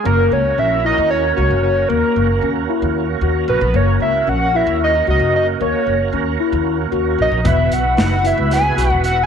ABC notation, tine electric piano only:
X:1
M:7/8
L:1/8
Q:1/4=114
K:F#mix
V:1 name="Tine electric piano"
A,2 C E2 F2 | A,2 C E2 F2 | A,2 C E2 F2 | A,2 C E2 F2 |
B,2 D E2 F2 |]